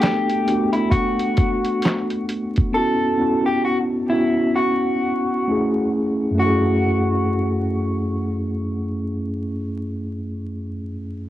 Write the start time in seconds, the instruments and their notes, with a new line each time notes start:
Already playing: tine electric piano A3 B3 D4 F#4 A4
0.00 clean electric guitar G4, snare, clap, closed hi-hat
0.30 closed hi-hat
0.45 tine electric piano A3 B3 D4, closed hi-hat
0.49 tine electric piano F#4
0.73 clean electric guitar E4, closed hi-hat
0.91 clean electric guitar F#4, kick, closed hi-hat
1.19 closed hi-hat
1.37 kick, closed hi-hat
1.65 closed hi-hat
1.82 snare, clap, closed hi-hat
2.10 closed hi-hat
2.29 closed hi-hat
2.56 kick, closed hi-hat
2.73 tine electric piano B3 C#4 E4 F#4, clean electric guitar A4
3.17 tine electric piano B3 C#4 E4 F#4
3.46 clean electric guitar G4
3.65 clean electric guitar F#4
4.09 tine electric piano B3 C#4 E4 F#4, clean electric guitar E4
4.56 clean electric guitar F#4
5.48 tine electric piano A3 C#4 E4 G#4
6.31 tine electric piano F#2 A3
6.38 tine electric piano C#4, clean electric guitar F#4
6.42 tine electric piano E4 G#4